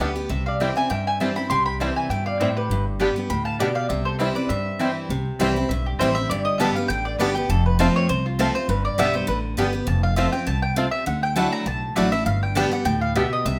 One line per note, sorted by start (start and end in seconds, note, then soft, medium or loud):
0.00 0.26 D2 medium
0.00 0.15 D3 medium
0.00 0.16 G3 medium
0.00 0.08 G3 medium
0.00 0.16 B3 medium
0.00 0.08 B3 medium
0.00 0.08 D4 soft
0.00 0.10 G4 medium
0.00 0.14 G4 medium
0.00 0.10 D5 medium
0.00 0.10 G5 medium
0.16 0.30 B3 medium
0.16 0.29 G4 medium
0.29 0.68 C2 medium
0.29 0.87 C3 medium
0.29 0.46 C5 medium
0.29 0.46 E5 medium
0.46 0.59 D5 medium
0.46 0.60 F5 medium
0.60 0.76 E3 medium
0.60 0.76 G3 medium
0.60 0.68 G3 medium
0.60 0.70 C4 medium
0.60 0.76 C4 medium
0.60 0.68 C4 medium
0.60 0.70 E4 medium
0.60 0.74 E4 medium
0.60 0.68 E4 medium
0.60 0.70 C5 medium
0.60 0.75 E5 medium
0.60 0.76 G5 medium
0.60 0.70 G5 medium
0.76 0.90 C4 medium
0.76 0.89 E4 medium
0.76 0.90 E5 medium
0.76 0.90 G#5 loud
0.90 1.47 G2 medium
0.90 1.29 G2 medium
0.90 1.06 E5 medium
0.90 1.06 G5 medium
1.07 1.19 E5 medium
1.07 1.20 G#5 medium
1.20 1.36 E3 medium
1.20 1.36 G3 medium
1.20 1.28 G3 medium
1.20 1.30 C4 medium
1.20 1.36 C4 medium
1.20 1.28 C4 medium
1.20 1.30 E4 medium
1.20 1.35 E4 medium
1.20 1.28 E4 medium
1.20 1.30 C5 medium
1.20 1.36 E5 medium
1.20 1.31 G5 medium
1.20 1.36 A5 medium
1.36 1.50 C4 soft
1.36 1.50 E4 medium
1.36 1.50 G5 medium
1.36 1.49 B5 loud
1.50 1.89 C2 medium
1.50 2.08 C3 medium
1.50 1.66 G5 medium
1.50 1.65 C6 loud
1.66 1.80 G5 medium
1.66 1.80 B5 medium
1.80 2.09 E3 medium
1.80 2.09 G3 medium
1.80 1.88 G3 medium
1.80 1.90 C4 medium
1.80 2.09 C4 medium
1.80 1.88 C4 medium
1.80 1.90 E4 medium
1.80 2.10 E4 medium
1.80 1.88 E4 medium
1.80 1.90 C5 medium
1.80 1.95 E5 medium
1.80 1.91 G5 medium
1.80 1.96 A5 medium
1.96 2.09 E5 medium
1.96 2.10 G#5 medium
2.10 2.48 G2 medium
2.10 2.39 B2 medium
2.10 2.26 E5 medium
2.10 2.25 G5 loud
2.26 2.40 D5 medium
2.26 2.40 F5 medium
2.40 2.69 A2 medium
2.40 2.48 G3 medium
2.40 2.50 C4 medium
2.40 2.48 C4 medium
2.40 2.50 E4 medium
2.40 2.48 E4 medium
2.40 2.55 C5 medium
2.40 2.50 C5 medium
2.40 2.56 E5 medium
2.40 2.50 G5 medium
2.57 2.85 G4 medium
2.57 2.84 B4 medium
2.70 3.08 G1 medium
2.70 3.28 G2 medium
3.00 3.15 D3 medium
3.00 3.16 G3 medium
3.00 3.08 G3 medium
3.00 3.10 B3 medium
3.00 3.16 B3 medium
3.00 3.08 B3 medium
3.00 3.08 D4 medium
3.00 3.10 G4 medium
3.00 3.15 G4 medium
3.00 3.10 D5 medium
3.00 3.10 G5 loud
3.16 3.30 B3 soft
3.16 3.30 G4 medium
3.30 3.68 D2 medium
3.30 3.59 A2 medium
3.30 3.45 G5 medium
3.30 3.45 B5 medium
3.45 3.59 F5 medium
3.45 3.59 A5 loud
3.59 3.89 B2 medium
3.59 3.68 G3 medium
3.59 3.69 B3 medium
3.59 3.68 B3 medium
3.59 3.68 D4 medium
3.59 3.70 G4 medium
3.59 3.73 D5 medium
3.59 3.70 D5 medium
3.59 3.75 G5 medium
3.59 3.70 G5 medium
3.75 3.88 D5 medium
3.75 3.89 F5 medium
3.89 4.28 C2 medium
3.89 4.47 C3 medium
3.89 4.05 C5 medium
3.89 4.05 E5 medium
4.05 4.19 A4 medium
4.05 4.18 C5 medium
4.19 4.35 E3 medium
4.19 4.36 G3 medium
4.19 4.28 G3 medium
4.19 4.29 C4 medium
4.19 4.36 C4 medium
4.19 4.28 C4 medium
4.19 4.29 E4 medium
4.19 4.35 E4 medium
4.19 4.28 E4 medium
4.19 4.35 G4 medium
4.19 4.35 B4 medium
4.19 4.30 C5 medium
4.19 4.30 G5 medium
4.35 4.50 C4 soft
4.35 4.49 E4 medium
4.35 4.49 B4 medium
4.35 4.49 D5 medium
4.49 4.69 G2 medium
4.49 5.07 G2 medium
4.49 4.99 C5 medium
4.49 4.99 E5 medium
4.79 5.08 E3 medium
4.79 5.09 G3 medium
4.79 4.87 G3 medium
4.79 4.89 C4 medium
4.79 5.09 C4 medium
4.79 4.87 C4 medium
4.79 4.90 E4 medium
4.79 4.88 E4 medium
4.79 5.09 E4 medium
4.79 4.90 C5 medium
4.79 4.90 G5 medium
5.09 5.29 C2 loud
5.09 5.67 C3 medium
5.39 5.65 C2 medium
5.39 5.55 E3 medium
5.39 5.55 G3 medium
5.39 5.47 G3 medium
5.39 5.49 C4 medium
5.39 5.56 C4 medium
5.39 5.48 C4 medium
5.39 5.49 E4 medium
5.39 5.55 E4 loud
5.39 5.48 E4 medium
5.39 5.50 C5 loud
5.39 5.50 G5 medium
5.56 5.70 C4 medium
5.56 5.69 E4 medium
5.69 5.95 B1 medium
5.69 6.27 G2 medium
5.69 5.85 E5 medium
5.86 6.00 G4 medium
5.99 6.25 A1 medium
5.99 6.16 E3 medium
5.99 6.07 G3 medium
5.99 6.16 G3 medium
5.99 6.09 C4 medium
5.99 6.07 C4 medium
5.99 6.16 C4 loud
5.99 6.09 E4 medium
5.99 6.08 E4 medium
5.99 6.15 E4 loud
5.99 6.15 C5 medium
5.99 6.09 C5 medium
5.99 6.10 G5 medium
6.15 6.30 C4 medium
6.15 6.29 E4 medium
6.15 6.29 E5 loud
6.29 6.68 G1 medium
6.29 6.87 G2 medium
6.29 6.44 D5 medium
6.45 6.59 D#5 loud
6.58 6.75 D3 medium
6.58 6.67 G3 medium
6.58 6.75 G3 medium
6.58 6.69 B3 medium
6.58 6.67 B3 medium
6.58 6.76 B3 loud
6.58 6.67 D4 medium
6.58 6.69 G4 medium
6.58 6.75 G4 medium
6.58 6.69 D5 loud
6.58 6.74 E5 medium
6.58 6.70 A5 medium
6.75 6.90 B3 soft
6.75 6.89 G4 medium
6.75 6.88 F5 medium
6.88 7.15 A1 medium
6.88 7.18 D3 medium
6.88 7.04 G5 loud
7.05 7.18 D5 medium
7.19 7.45 G1 medium
7.19 7.35 D3 medium
7.19 7.35 G3 medium
7.19 7.27 G3 medium
7.19 7.29 B3 medium
7.19 7.35 B3 medium
7.19 7.27 B3 medium
7.19 7.27 D4 medium
7.19 7.29 G4 medium
7.19 7.34 G4 loud
7.19 7.35 B4 medium
7.19 7.29 D5 medium
7.19 7.30 A5 medium
7.35 7.50 B3 medium
7.35 7.49 G4 medium
7.49 7.88 F1 medium
7.49 8.06 F2 medium
7.49 7.65 A4 medium
7.66 7.79 B4 medium
7.79 8.08 F3 loud
7.79 8.08 A3 medium
7.79 7.87 A3 medium
7.79 7.89 C4 loud
7.79 8.08 C4 loud
7.79 7.87 C4 medium
7.79 7.89 F4 loud
7.79 8.08 F4 medium
7.79 7.87 F4 medium
7.79 7.95 C5 medium
7.79 7.89 C5 medium
7.79 7.89 A5 loud
7.96 8.09 C#5 loud
8.09 8.47 C2 medium
8.09 8.66 C3 medium
8.09 8.25 C5 medium
8.26 8.39 F4 medium
8.39 8.54 F3 loud
8.39 8.54 A3 medium
8.39 8.46 A3 medium
8.39 8.48 C4 medium
8.39 8.55 C4 loud
8.39 8.46 C4 medium
8.39 8.49 F4 medium
8.39 8.54 F4 medium
8.39 8.47 F4 medium
8.39 8.55 A4 medium
8.39 8.49 C5 loud
8.39 8.49 A5 loud
8.55 8.69 C4 medium
8.55 8.68 F4 medium
8.55 8.68 C5 loud
8.68 8.88 G1 loud
8.68 9.26 G2 medium
8.68 8.84 B4 medium
8.85 8.98 D5 medium
8.98 9.24 B1 medium
8.98 9.14 D3 medium
8.98 9.14 G3 medium
8.98 9.06 G3 medium
8.98 9.08 B3 medium
8.98 9.14 B3 medium
8.98 9.06 B3 medium
8.98 9.06 D4 medium
8.98 9.08 G4 medium
8.98 9.13 G4 loud
8.98 9.08 D5 loud
8.98 9.14 E5 loud
8.98 9.09 G5 medium
9.14 9.28 B3 soft
9.14 9.27 G4 medium
9.14 9.28 C5 medium
9.27 9.54 A1 medium
9.27 9.56 D3 medium
9.27 9.38 B4 medium
9.57 9.83 G1 medium
9.57 9.73 D3 medium
9.57 9.73 G3 medium
9.57 9.65 G3 medium
9.57 9.68 B3 medium
9.57 9.73 B3 medium
9.57 9.66 B3 medium
9.57 9.66 D4 medium
9.57 9.68 G4 loud
9.57 9.71 G4 loud
9.57 9.68 D5 medium
9.57 9.68 G5 loud
9.73 9.88 B3 medium
9.73 9.87 G4 medium
9.87 10.26 F1 loud
9.87 10.44 F2 medium
9.87 10.03 A5 medium
10.03 10.16 F5 medium
10.16 10.32 F3 loud
10.16 10.33 A3 medium
10.16 10.25 A3 medium
10.16 10.27 C4 medium
10.16 10.33 C4 medium
10.16 10.25 C4 medium
10.16 10.27 F4 medium
10.16 10.31 F4 medium
10.16 10.25 F4 medium
10.16 10.28 C5 loud
10.16 10.32 E5 medium
10.16 10.28 A5 medium
10.32 10.47 C4 soft
10.32 10.47 F4 medium
10.32 10.47 G5 medium
10.47 10.85 C2 medium
10.47 10.76 B2 medium
10.47 10.62 A5 loud
10.62 10.76 G5 medium
10.76 11.05 C3 medium
10.76 10.85 A3 medium
10.76 10.87 C4 medium
10.76 10.85 C4 medium
10.76 10.87 F4 medium
10.76 10.85 F4 medium
10.76 10.87 C5 medium
10.76 10.91 F5 medium
10.76 10.87 A5 medium
10.91 11.06 E5 medium
11.06 11.45 D2 loud
11.06 11.64 D3 medium
11.06 11.23 F#5 medium
11.23 11.36 G5 loud
11.36 11.65 F#3 loud
11.36 11.65 A3 loud
11.36 11.46 A3 medium
11.36 11.44 A3 medium
11.36 11.65 D4 loud
11.36 11.40 D4 medium
11.36 11.47 E4 loud
11.36 11.65 E4 medium
11.36 11.47 D5 medium
11.36 11.47 F#5 medium
11.36 11.52 A5 medium
11.52 11.66 A#5 loud
11.66 11.92 B1 medium
11.66 12.23 A2 medium
11.66 11.95 A5 loud
11.95 12.22 A1 medium
11.95 12.12 F#3 medium
11.95 12.06 A3 medium
11.95 12.12 A3 medium
11.95 12.04 A3 medium
11.95 12.12 D4 medium
11.95 12.00 D4 medium
11.95 12.06 E4 medium
11.95 12.11 E4 medium
11.95 12.06 D5 medium
11.95 12.12 F#5 medium
11.95 12.06 F#5 loud
12.12 12.26 D4 medium
12.12 12.26 E4 medium
12.12 12.26 E5 loud
12.26 12.64 G1 loud
12.26 12.83 G2 medium
12.26 12.42 F5 medium
12.43 12.56 G5 medium
12.55 12.71 D3 medium
12.55 12.71 G3 loud
12.55 12.63 G3 medium
12.55 12.65 B3 medium
12.55 12.72 B3 loud
12.55 12.64 B3 medium
12.55 12.64 D4 medium
12.55 12.66 G4 medium
12.55 12.70 G4 loud
12.55 12.66 D5 loud
12.55 12.66 G5 loud
12.55 12.72 A5 medium
12.71 12.86 B3 soft
12.71 12.85 G4 medium
12.71 12.85 F#5 medium
12.85 13.24 D2 loud
12.85 13.14 A2 medium
12.85 13.01 G5 loud
13.01 13.15 F5 medium
13.16 13.44 B2 medium
13.16 13.23 G3 medium
13.16 13.25 B3 medium
13.16 13.23 B3 medium
13.16 13.23 D4 medium
13.16 13.25 G4 medium
13.16 13.26 D5 loud
13.16 13.31 E5 medium
13.16 13.26 G5 loud
13.33 13.46 D#5 medium
13.45 13.59 C2 loud
13.45 13.59 C3 loud
13.45 13.59 E5 loud